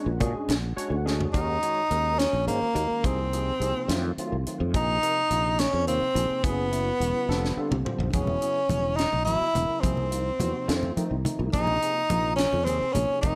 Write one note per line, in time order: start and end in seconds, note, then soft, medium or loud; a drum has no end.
0.00 0.10 G#3 medium
0.00 0.10 C#4 medium
0.00 0.10 D4 medium
0.00 0.10 F#4 medium
0.00 0.10 C#5 medium
0.00 0.75 F#5 medium
0.06 0.18 A#1 medium
0.20 0.32 A#2 medium
0.20 0.56 G#3 medium
0.20 0.56 C#4 medium
0.20 0.56 D4 medium
0.20 0.56 F#4 medium
0.20 0.56 G#4 medium
0.20 kick medium
0.20 closed hi-hat medium
0.20 low conga medium
0.34 muted fretless electric bass stroke soft
0.49 0.72 A#1 loud
0.49 snare loud
0.49 closed hi-hat medium
0.49 high conga loud
0.49 low conga soft
0.63 low conga soft
0.76 0.95 G#3 medium
0.76 0.95 C#4 medium
0.76 0.95 D4 medium
0.76 0.95 F#4 medium
0.76 0.95 C#5 medium
0.76 1.30 F#5 medium
0.76 closed hi-hat medium
0.90 1.25 D2 medium
0.90 low conga soft
1.05 1.33 G#3 medium
1.05 1.33 C#4 medium
1.05 1.34 D4 medium
1.05 1.33 F#4 medium
1.05 1.34 G#4 medium
1.05 snare medium
1.20 floor tom medium
1.20 low conga soft
1.33 1.57 D#2 medium
1.33 1.57 D#3 medium
1.33 1.57 G#3 medium
1.33 1.57 C#4 medium
1.33 2.20 D#4 medium
1.33 1.57 F#4 medium
1.33 1.57 A#4 medium
1.33 kick medium
1.33 closed hi-hat medium
1.62 1.80 D#3 medium
1.62 1.80 G#3 medium
1.62 1.80 C#4 medium
1.62 1.80 F#4 medium
1.62 1.80 C#5 medium
1.62 closed hi-hat medium
1.91 2.25 D#2 medium
1.91 2.26 D#3 medium
1.91 2.26 G#3 medium
1.91 2.26 C#4 medium
1.91 2.26 F#4 medium
1.91 2.26 A#4 medium
1.91 closed hi-hat soft
2.19 2.47 C#4 medium
2.19 snare medium
2.19 closed hi-hat medium
2.33 2.48 A#1 medium
2.47 2.59 G#2 medium
2.47 2.65 D#3 medium
2.47 2.65 G#3 medium
2.47 3.08 A#3 medium
2.47 2.65 C#4 medium
2.47 2.65 F#4 medium
2.47 2.65 C5 medium
2.47 closed hi-hat soft
2.62 muted fretless electric bass stroke soft
2.75 2.87 D#2 loud
2.75 3.04 D#3 medium
2.75 3.04 G#3 soft
2.75 3.04 C#4 soft
2.75 3.04 F#4 soft
2.75 3.04 A#4 medium
2.75 closed hi-hat medium
2.90 muted fretless electric bass stroke soft
3.04 3.50 C2 medium
3.04 3.27 C3 medium
3.04 3.27 F3 medium
3.04 3.27 A#3 medium
3.04 4.18 C4 medium
3.04 3.27 D#4 medium
3.04 3.27 G#4 medium
3.04 kick medium
3.04 closed hi-hat medium
3.33 3.50 C3 medium
3.33 3.50 F3 medium
3.33 3.50 A#3 soft
3.33 3.50 D#4 medium
3.33 3.50 G#4 medium
3.33 closed hi-hat medium
3.60 3.72 C2 medium
3.60 3.90 C3 medium
3.60 3.89 F3 medium
3.60 3.89 A#3 medium
3.60 3.89 D#4 medium
3.60 3.89 G#4 medium
3.60 closed hi-hat medium
3.88 4.11 F2 medium
3.88 4.12 D#3 medium
3.88 4.12 F#3 medium
3.88 4.12 A3 medium
3.88 4.12 C4 medium
3.88 4.12 F4 medium
3.88 snare medium
3.88 closed hi-hat medium
4.17 4.36 D#3 medium
4.17 4.35 F#3 medium
4.17 4.35 A3 medium
4.17 4.35 C4 medium
4.17 4.36 F4 medium
4.17 muted fretless electric bass stroke soft
4.17 closed hi-hat medium
4.32 4.43 C2 medium
4.46 4.75 D#3 medium
4.46 4.75 F#3 medium
4.46 4.75 A3 medium
4.46 4.75 C4 medium
4.46 4.75 F4 medium
4.46 muted fretless electric bass stroke soft
4.46 closed hi-hat medium
4.60 4.71 F2 medium
4.74 4.97 A#1 medium
4.74 4.97 C3 medium
4.74 4.97 F3 medium
4.74 4.97 A#3 medium
4.74 4.97 D#4 medium
4.74 5.61 D#4 loud
4.74 4.97 G#4 medium
4.74 kick medium
4.74 closed hi-hat medium
5.03 5.20 C3 medium
5.03 5.20 F3 medium
5.03 5.20 A#3 medium
5.03 5.20 D#4 medium
5.03 5.20 A#4 medium
5.03 closed hi-hat medium
5.30 5.65 A#1 medium
5.30 5.66 C3 medium
5.30 5.66 F3 medium
5.30 5.66 A#3 medium
5.30 5.66 D#4 medium
5.30 5.66 F4 medium
5.30 closed hi-hat medium
5.59 5.87 C#4 medium
5.59 snare loud
5.59 closed hi-hat medium
5.73 5.87 F2 medium
5.87 5.98 D#2 medium
5.87 6.05 C3 medium
5.87 6.05 F3 medium
5.87 6.05 A#3 medium
5.87 6.45 C4 medium
5.87 6.05 D#4 medium
5.87 6.05 F4 medium
5.87 closed hi-hat medium
6.01 muted fretless electric bass stroke soft
6.15 6.27 A#1 medium
6.15 6.44 C3 medium
6.15 6.44 F3 soft
6.15 6.44 A#3 soft
6.15 6.44 D#4 soft
6.15 6.43 G#4 medium
6.15 closed hi-hat medium
6.30 muted fretless electric bass stroke soft
6.44 6.89 F#1 medium
6.44 6.67 C#3 medium
6.44 6.67 F#3 medium
6.44 7.85 B3 medium
6.44 6.67 B3 medium
6.44 6.67 E4 medium
6.44 6.66 G#4 medium
6.44 kick loud
6.44 closed hi-hat medium
6.71 6.89 C#3 medium
6.71 6.90 F#3 medium
6.71 6.89 B3 medium
6.71 6.90 E4 medium
6.71 6.89 F#4 medium
6.71 closed hi-hat medium
7.00 7.12 E1 medium
7.00 7.29 C#3 medium
7.00 7.29 F#3 medium
7.00 7.29 B3 medium
7.00 7.29 E4 medium
7.00 7.29 F#4 medium
7.00 closed hi-hat medium
7.28 7.51 F1 medium
7.28 7.52 D3 medium
7.28 7.52 G3 medium
7.28 7.52 C4 medium
7.28 7.52 F4 medium
7.28 7.52 A4 loud
7.28 snare soft
7.45 snare soft
7.57 7.75 D3 medium
7.57 7.75 G3 medium
7.57 7.75 C4 medium
7.57 7.75 F4 medium
7.57 7.75 A4 medium
7.57 muted fretless electric bass stroke soft
7.71 7.83 C2 medium
7.71 mid tom medium
7.85 8.13 D3 medium
7.85 8.14 G3 medium
7.85 8.13 C4 medium
7.85 8.13 F4 medium
7.85 8.14 C5 medium
7.85 muted fretless electric bass stroke soft
7.85 mid tom medium
7.98 8.10 B1 medium
7.98 floor tom medium
8.13 8.36 E1 medium
8.13 8.36 C#3 medium
8.13 8.36 F#3 medium
8.13 8.36 B3 medium
8.13 8.98 C#4 medium
8.13 8.37 E4 medium
8.13 8.36 G#4 medium
8.13 kick loud
8.13 closed hi-hat medium
8.13 high conga medium
8.27 low conga medium
8.41 8.59 C#3 medium
8.41 8.59 F#3 medium
8.41 8.59 B3 medium
8.41 8.59 E4 medium
8.41 8.59 G#4 medium
8.41 closed hi-hat medium
8.69 9.04 E1 medium
8.69 9.05 C#3 medium
8.69 9.05 F#3 medium
8.69 9.05 B3 soft
8.69 9.05 E4 medium
8.69 9.05 G#4 medium
8.69 closed hi-hat medium
8.69 high conga medium
8.69 low conga medium
8.96 9.24 D#4 medium
8.96 snare loud
8.96 closed hi-hat medium
9.13 9.27 B1 medium
9.13 low conga medium
9.25 9.38 G#1 medium
9.25 9.44 C#3 medium
9.25 9.44 F#3 medium
9.25 9.44 B3 medium
9.25 9.82 E4 loud
9.25 9.44 E4 medium
9.25 9.44 F#4 medium
9.25 closed hi-hat medium
9.25 high conga medium
9.25 low conga soft
9.41 muted fretless electric bass stroke soft
9.54 9.67 E1 medium
9.54 9.83 C#3 soft
9.54 9.83 F#3 soft
9.54 9.83 B3 soft
9.54 9.83 E4 medium
9.54 9.83 A#4 medium
9.54 closed hi-hat medium
9.54 low conga medium
9.69 muted fretless electric bass stroke soft
9.69 low conga soft
9.81 10.29 C2 medium
9.81 10.06 C3 medium
9.81 10.06 F3 medium
9.81 10.06 A#3 medium
9.81 11.24 C4 medium
9.81 10.06 D#4 medium
9.81 10.06 G#4 medium
9.81 kick medium
9.81 closed hi-hat medium
9.81 high conga medium
9.97 low conga medium
10.11 10.29 C3 medium
10.11 10.29 F3 medium
10.11 10.29 A#3 medium
10.11 10.29 D#4 medium
10.11 10.29 F4 medium
10.11 closed hi-hat medium
10.39 10.51 E2 medium
10.39 10.68 C3 medium
10.39 10.67 F3 medium
10.39 10.68 A#3 medium
10.39 10.68 D#4 medium
10.39 10.68 F#4 medium
10.39 closed hi-hat medium
10.39 high conga medium
10.39 low conga medium
10.68 10.91 F2 medium
10.68 10.91 D#3 medium
10.68 10.91 F3 medium
10.68 10.91 A3 medium
10.68 10.91 C4 medium
10.68 10.91 F4 medium
10.68 snare loud
10.68 closed hi-hat medium
10.83 low conga medium
10.97 11.14 D#3 medium
10.97 11.14 F3 medium
10.97 11.14 A3 medium
10.97 11.14 C4 medium
10.97 11.14 D#4 medium
10.97 muted fretless electric bass stroke soft
10.97 closed hi-hat medium
10.97 high conga medium
10.97 low conga soft
11.11 11.22 C2 medium
11.25 11.53 D#3 medium
11.25 11.52 F3 medium
11.25 11.53 A3 medium
11.25 11.53 C4 medium
11.25 11.52 D#4 medium
11.25 closed hi-hat medium
11.25 low conga medium
11.39 11.50 C2 medium
11.39 low conga soft
11.53 11.76 A#1 loud
11.53 11.76 C3 medium
11.53 11.76 F3 medium
11.53 11.76 A#3 medium
11.53 12.34 D#4 medium
11.53 11.76 D#4 medium
11.53 11.76 G#4 medium
11.53 kick medium
11.53 closed hi-hat medium
11.53 high conga medium
11.67 low conga medium
11.82 11.99 C3 medium
11.82 12.00 F3 medium
11.82 12.00 A#3 medium
11.82 12.00 D#4 medium
11.82 12.00 G#4 medium
11.82 closed hi-hat medium
12.10 12.45 A#1 medium
12.10 12.45 C3 medium
12.10 12.45 F3 medium
12.10 12.45 A#3 medium
12.10 12.45 D#4 medium
12.10 12.45 F4 medium
12.10 closed hi-hat medium
12.10 high conga medium
12.10 low conga loud
12.36 12.66 C#4 medium
12.36 snare loud
12.36 closed hi-hat medium
12.53 12.67 F2 medium
12.53 low conga medium
12.64 12.78 D#2 medium
12.64 12.85 C3 medium
12.64 12.84 F3 medium
12.64 12.85 A#3 medium
12.64 12.94 C4 medium
12.64 12.85 D#4 medium
12.64 closed hi-hat medium
12.64 high conga medium
12.64 low conga soft
12.68 12.85 G#4 medium
12.81 muted fretless electric bass stroke soft
12.93 13.07 A#1 loud
12.93 13.23 C3 medium
12.93 13.22 F3 medium
12.93 13.22 A#3 medium
12.93 13.21 C#4 medium
12.93 13.23 D#4 soft
12.93 13.23 G#4 medium
12.93 closed hi-hat medium
12.93 low conga medium
13.09 muted fretless electric bass stroke soft
13.09 low conga soft
13.21 13.35 F1 medium
13.21 13.35 C3 medium
13.21 13.35 F3 medium
13.21 13.35 A#3 medium
13.21 13.35 D#4 medium
13.21 13.35 G4 medium
13.21 kick medium
13.21 closed hi-hat medium
13.21 high conga medium